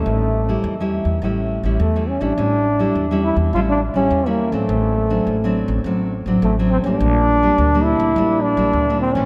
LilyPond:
<<
  \new Staff \with { instrumentName = "Trombone" } { \time 4/4 \key a \phrygian \tempo 4 = 104 a4. r4. a8 cis'16 d'16~ | d'4. e'8 f'16 d'8 cis'8 bes8 a16~ | a2~ a16 r8. a8 c'16 d'16~ | d'4. e'4 d'4 c'16 cis'16 | }
  \new Staff \with { instrumentName = "Nylon-string guitar" } { \time 4/4 \key a \phrygian << { <g cis' e'>8. <g cis' e'>8 <g cis' e'>8. <g cis' e'>8. <g cis' e'>8 <g cis' e'>8 <g cis' e'>16 | <g cis' e'>8 r16 <g cis' e'>8 <g cis' e'>8. <g cis' e'>8 r16 <g cis' e'>8 <g cis' e'>8 <fis c' d'>16~ | <fis c' d'>8. <fis c' d'>8 <fis c' d'>8. <fis c' d'>8 r16 <fis c' d'>8 <fis c' d'>8 <g bes d'>16~ | <g bes d'>8. <g bes d'>8 <g bes d'>8. <g bes d'>8. <g bes d'>8 <g bes d'>8 <e a cis'>16 | } \\ { a,4 e4 a,4 e4 | a,4 e4 a,4 e4 | a,4 a,4 a,4 a,4 | bes,4 bes,4 bes,4 bes,4 | } >> }
  \new Staff \with { instrumentName = "Upright bass" } { \clef bass \time 4/4 \key a \phrygian a,,4 e,8. e,16 a,,8. a,,16 e,8. a,,16 | a,,4 e,8. e,16 a,,8. a,,16 e,8. a,,16 | a,,4 a,,8. a,,16 a,,8. a,,16 a,,8. a,,16 | bes,,4 d,8. d,16 bes,,8. bes,,16 d,8. gis,,16 | }
>>